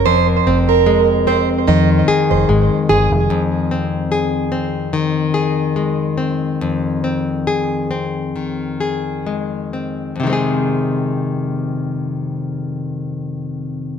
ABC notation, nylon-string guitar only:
X:1
M:4/4
L:1/8
Q:"Swing 16ths" 1/4=70
K:Fm
V:1 name="Nylon-string guitar"
F,, C A, C E, A A, A | F,, C A C E, A A, C | F,, C A C E, A A, C | [F,,C,E,A,CA]8 |]